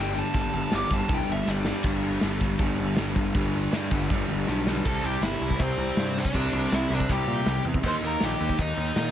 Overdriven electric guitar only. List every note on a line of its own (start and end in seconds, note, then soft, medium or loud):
0.00 0.14 G2 medium
0.00 0.14 D3 medium
0.00 0.15 G3 loud
0.15 0.32 G2 medium
0.15 0.33 D3 loud
0.15 0.34 G3 loud
0.33 0.70 G2 loud
0.33 0.71 D3 loud
0.33 0.71 G3 loud
0.71 0.89 G2 medium
0.71 0.89 D3 loud
0.71 0.90 G3 loud
0.90 1.08 G2 loud
0.90 1.08 D3 loud
0.90 1.09 G3 loud
1.09 1.45 G2 medium
1.09 1.46 D3 loud
1.09 1.47 G3 loud
1.47 1.64 G2 medium
1.47 1.65 D3 medium
1.47 1.66 G3 loud
1.66 1.82 G2 medium
1.66 1.83 D3 medium
1.66 1.84 G3 medium
1.83 2.22 G2 medium
1.83 2.21 D3 loud
1.83 2.23 G3 loud
2.22 2.40 G2 medium
2.22 2.40 D3 loud
2.22 2.41 G3 loud
2.41 2.58 G2 medium
2.41 2.58 D3 medium
2.41 2.60 G3 loud
2.59 2.96 G2 loud
2.59 2.96 D3 loud
2.59 2.98 G3 loud
2.98 3.14 G2 medium
2.98 3.15 D3 medium
2.98 3.16 G3 loud
3.16 3.34 G2 loud
3.16 3.34 D3 medium
3.16 3.35 G3 medium
3.35 3.72 G2 loud
3.35 3.73 D3 loud
3.35 3.73 G3 loud
3.73 3.90 G2 medium
3.73 3.90 D3 medium
3.73 3.91 G3 loud
3.91 4.09 G2 medium
3.91 4.10 D3 loud
3.91 4.11 G3 loud
4.10 4.47 G2 loud
4.10 4.47 D3 loud
4.10 4.48 G3 loud
4.48 4.66 G2 medium
4.48 4.67 D3 medium
4.48 4.67 G3 medium
4.68 4.84 G2 medium
4.68 4.84 D3 medium
4.68 4.85 G3 loud
4.85 6.33 C3 loud
4.85 6.35 G3 loud
4.85 6.35 C4 loud
6.34 7.83 C3 loud
6.34 7.85 G3 loud
6.34 7.84 C4 loud
7.83 9.11 D#3 loud
7.83 9.11 A#3 loud
7.83 9.11 D#4 loud